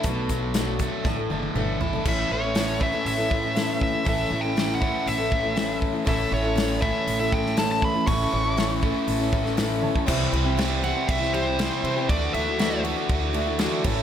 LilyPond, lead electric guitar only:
\new Staff \with { instrumentName = "Lead electric guitar" } { \time 4/4 \key a \mixolydian \tempo 4 = 120 r1 | e''8 cis''4 e''8 e''4. e''8 | \tuplet 3/2 { e''4 g''8~ g''8 fis''4 } e''4. r8 | e''8 cis''4 e''8. e''16 g''8 a''16 a''16 b''8 |
cis'''2.~ cis'''8 r8 | r4. fis''8 e''8 c''4. | d''8 e''4 r2 r8 | }